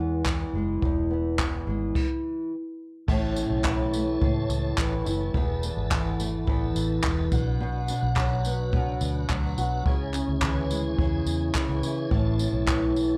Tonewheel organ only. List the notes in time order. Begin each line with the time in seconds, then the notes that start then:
3.08 E4 A4 C#5 A5
5.35 E4 B4
7.32 D4 F#4 F#5
9.87 E4 G#4 C#5 G#5
12.11 A4 C#5 A5